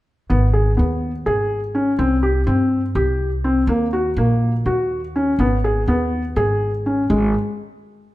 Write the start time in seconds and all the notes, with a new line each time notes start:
0.30 G#1 B3
0.53 G#4
0.77 D#2 B3
1.26 G#1 G#4
1.75 C#4
1.99 C2 C4
2.23 G4
2.47 G2 C4
2.95 C2 G4
3.44 C4
3.67 D#2 A#3
3.93 F#4
4.17 A#1 A#3
4.66 D#2 F#4
5.16 C#4
5.39 G#1 B3
5.64 G#4
5.88 D#2 B3
6.36 G#1 G#4
6.86 C#4
7.10 G#1 G#3